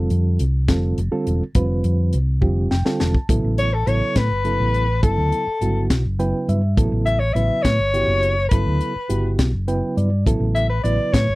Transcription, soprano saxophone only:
3.59 3.75 C#5 medium
3.73 3.89 A4 medium
3.87 4.19 C#5 medium
4.17 5.02 B4 medium
5.03 5.86 A4 medium
7.06 7.21 E5 medium
7.19 7.35 C#5 medium
7.33 7.64 E5 medium
7.63 8.48 C#5 medium
8.49 9.34 B4 medium
10.55 10.69 E5 medium
10.70 10.83 B4 medium
10.84 11.15 D5 medium
11.13 11.35 C#5 medium

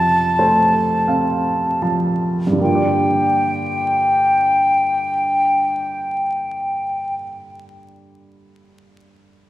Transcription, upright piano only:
0.00 2.56 F2 soft
0.00 1.77 C3 soft
0.00 1.81 F3 soft
0.39 2.56 A3 soft
0.39 1.04 C5 soft
1.08 2.56 C4 soft
1.08 1.78 F5 soft
1.82 2.58 F3 soft
1.82 2.57 A5 soft
2.47 7.00 G2 soft
2.53 7.05 D3 soft
2.58 7.11 A#3 soft
2.64 7.16 F4 soft
2.69 7.22 G4 soft
2.75 7.28 D5 soft

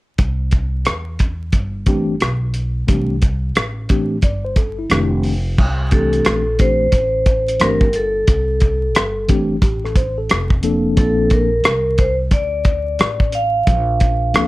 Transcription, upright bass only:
0.19 0.83 C2 medium
0.86 1.50 E2 medium
1.53 2.17 G1 medium
2.21 2.85 B1 medium
2.88 3.52 C2 medium
3.56 4.20 A1 medium
4.23 4.87 G1 medium
4.91 5.55 F1 medium
5.58 6.22 C2 loud
6.26 6.90 A#1 medium
6.93 7.57 A1 medium
7.61 8.25 G1 medium
8.28 8.96 C2 loud
8.96 9.59 G1 medium
9.62 10.26 A1 medium
10.31 10.94 F1 medium
10.97 11.61 A#1 loud
11.65 12.29 C2 medium
12.31 12.96 D2 medium
13.00 13.64 A1 medium
13.67 14.31 A#1 loud
14.35 14.47 D2 medium

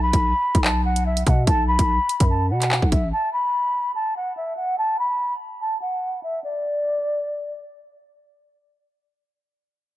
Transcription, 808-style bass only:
0.00 0.12 B1 loud
0.13 0.33 B1 loud
0.55 1.24 B1 loud
1.27 1.46 B2 loud
1.47 1.78 B1 loud
1.79 1.99 B1 loud
2.20 2.52 F#2 loud
2.51 2.81 B2 loud
2.82 3.05 B1 loud
3.03 3.12 A1 loud

